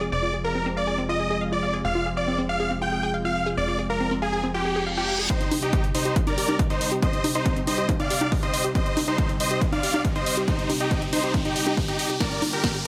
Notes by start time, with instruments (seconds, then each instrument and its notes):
Already playing: analog synth pad C3 F3 G#3
0.01 synth arpeggio sound G#4
0.12 analog synth bass F1, synth arpeggio sound C4, supersaw synth D5
0.23 synth arpeggio sound F4
0.34 synth arpeggio sound G#4
0.44 supersaw synth A#4, synth arpeggio sound F5
0.55 synth arpeggio sound C4
0.66 synth arpeggio sound C4
0.77 supersaw synth D5, synth arpeggio sound F5
0.87 synth arpeggio sound G#4
0.98 synth arpeggio sound C4
1.09 synth arpeggio sound F4, supersaw synth D#5
1.20 synth arpeggio sound G#4
1.30 synth arpeggio sound G#4
1.41 synth arpeggio sound F5
1.52 synth arpeggio sound F4, supersaw synth D5
1.63 synth arpeggio sound F5
1.74 synth arpeggio sound G#4
1.85 analog synth bass F1, synth arpeggio sound C4, supersaw synth F5
1.95 synth arpeggio sound F4
2.06 synth arpeggio sound G#4
2.17 supersaw synth D5, synth arpeggio sound F5
2.28 synth arpeggio sound C4
2.38 synth arpeggio sound C4
2.49 synth arpeggio sound F5, supersaw synth F5
2.60 synth arpeggio sound G#4
2.71 synth arpeggio sound C4
2.82 synth arpeggio sound F4, supersaw synth G5
2.92 synth arpeggio sound G#4
3.03 synth arpeggio sound G#4
3.14 synth arpeggio sound F5
3.25 synth arpeggio sound F4, supersaw synth F5
3.36 synth arpeggio sound F5
3.46 synth arpeggio sound G#4
3.57 analog synth bass F1, synth arpeggio sound C4, supersaw synth D5
3.68 synth arpeggio sound F4
3.79 synth arpeggio sound G#4
3.90 supersaw synth A#4, synth arpeggio sound F5
4.00 synth arpeggio sound C4
4.11 synth arpeggio sound C4
4.22 supersaw synth G#4, synth arpeggio sound F5
4.33 synth arpeggio sound G#4
4.44 synth arpeggio sound C4, reverse cymbal
4.54 synth arpeggio sound F4, supersaw synth G4
4.65 synth arpeggio sound G#4
4.76 synth arpeggio sound G#4
4.87 synth arpeggio sound F5
4.97 synth arpeggio sound F4, supersaw synth G4
5.08 synth arpeggio sound F5
5.19 synth arpeggio sound G#4
5.30 analog synth pad C2 C3 G3 D#4 G4, synth arpeggio sound C4, supersaw synth D#4 C5, kick, closed hi-hat, riser
5.41 synth arpeggio sound D#4, closed hi-hat
5.51 synth arpeggio sound G4, open hi-hat, high conga
5.62 supersaw synth D#4 G4, synth arpeggio sound D#5, closed hi-hat
5.73 synth arpeggio sound C4, kick, closed hi-hat
5.84 synth arpeggio sound C4, closed hi-hat
5.95 supersaw synth D#4 C5, synth arpeggio sound D#5, open hi-hat
6.05 synth arpeggio sound G4, closed hi-hat
6.16 synth arpeggio sound C4, kick, closed hi-hat
6.27 synth arpeggio sound D#4, supersaw synth A#4 D5, closed hi-hat, high conga
6.38 synth arpeggio sound G4, open hi-hat
6.49 synth arpeggio sound G4, closed hi-hat, high conga
6.59 synth arpeggio sound D#5, kick, closed hi-hat
6.70 synth arpeggio sound D#4, supersaw synth D#4 C5, closed hi-hat
6.81 synth arpeggio sound D#5, open hi-hat
6.92 synth arpeggio sound G4, closed hi-hat
7.02 synth arpeggio sound C4, supersaw synth C5 D#5, kick, closed hi-hat
7.13 synth arpeggio sound D#4, closed hi-hat
7.24 synth arpeggio sound G4, open hi-hat, high conga
7.35 supersaw synth D#4 C5, synth arpeggio sound D#5, closed hi-hat
7.46 synth arpeggio sound C4, kick, closed hi-hat
7.56 synth arpeggio sound C4, closed hi-hat
7.67 supersaw synth C5 D#5, synth arpeggio sound D#5, open hi-hat, high conga
7.78 synth arpeggio sound G4, closed hi-hat
7.89 synth arpeggio sound C4, kick, closed hi-hat, high conga
8.00 synth arpeggio sound D#4, supersaw synth D5 F5, closed hi-hat
8.10 synth arpeggio sound G4, open hi-hat
8.21 synth arpeggio sound G4, high conga
8.32 synth arpeggio sound D#5, kick, open hi-hat
8.43 synth arpeggio sound D#4, supersaw synth C5 D#5, closed hi-hat
8.54 synth arpeggio sound D#5, open hi-hat
8.64 synth arpeggio sound G4, closed hi-hat
8.75 synth arpeggio sound C4, supersaw synth C5 D#5, kick, closed hi-hat
8.86 synth arpeggio sound D#4, closed hi-hat
8.97 synth arpeggio sound G4, open hi-hat, high conga
9.08 supersaw synth D#4 C5, synth arpeggio sound D#5, closed hi-hat
9.18 synth arpeggio sound C4, kick, closed hi-hat
9.29 synth arpeggio sound C4, closed hi-hat
9.40 supersaw synth C5 D#5, synth arpeggio sound D#5, open hi-hat
9.51 synth arpeggio sound G4, closed hi-hat
9.61 synth arpeggio sound C4, kick, closed hi-hat
9.72 synth arpeggio sound D#4, supersaw synth D5 F5, closed hi-hat, high conga
9.83 synth arpeggio sound G4, open hi-hat
9.94 synth arpeggio sound G4, closed hi-hat, high conga
10.05 synth arpeggio sound D#5, kick, closed hi-hat
10.16 synth arpeggio sound D#4, supersaw synth C5 D#5, closed hi-hat
10.26 synth arpeggio sound D#5, open hi-hat
10.37 synth arpeggio sound G4, closed hi-hat
10.48 synth arpeggio sound C4, supersaw synth D#4 C5, kick, closed hi-hat
10.59 synth arpeggio sound D#4, closed hi-hat
10.70 synth arpeggio sound G4, open hi-hat, high conga
10.80 supersaw synth D#4 G4, synth arpeggio sound D#5, closed hi-hat
10.91 synth arpeggio sound C4, kick, closed hi-hat
11.02 synth arpeggio sound C4, closed hi-hat
11.13 supersaw synth D#4 C5, synth arpeggio sound D#5, open hi-hat, high conga
11.23 synth arpeggio sound G4, closed hi-hat
11.34 synth arpeggio sound C4, kick, closed hi-hat, high conga
11.45 synth arpeggio sound D#4, supersaw synth D#4 G4, closed hi-hat
11.56 synth arpeggio sound G4, open hi-hat
11.67 synth arpeggio sound G4, high conga
11.77 synth arpeggio sound D#5, kick, open hi-hat
11.88 synth arpeggio sound D#4, supersaw synth D#4 G4, closed hi-hat
11.99 synth arpeggio sound D#5, open hi-hat
12.10 synth arpeggio sound G4, closed hi-hat
12.20 analog synth pad G2 D3 A#3 F4 G4, synth arpeggio sound A#3, supersaw synth A#4 D5, kick, snare, closed hi-hat
12.31 synth arpeggio sound D4, closed hi-hat
12.42 synth arpeggio sound F4, open hi-hat, high conga
12.53 supersaw synth G4 A#4, synth arpeggio sound A#4, closed hi-hat
12.64 synth arpeggio sound A#3, kick, snare, closed hi-hat
12.74 synth arpeggio sound G4, closed hi-hat